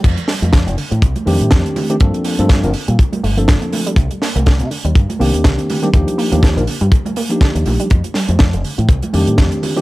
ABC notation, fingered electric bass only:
X:1
M:4/4
L:1/16
Q:"Swing 16ths" 1/4=122
K:Fmix
V:1 name="Fingered electric bass" clef=bass
F,, z2 F,,2 F,,, z A,, C,, z F,, A,, F,, z3 | G,, z2 G,,2 G,,, z B,, z2 G,,,3 z3 | C,, z2 C,,2 C, z E,, G,, z C,, E,, C,, z3 | E,, z2 E,,2 B,,, z G,, z4 z E,, B,,, z |
F,, z2 F,,2 F,,, z A,, C,, z F,, A,, F,, z3 |]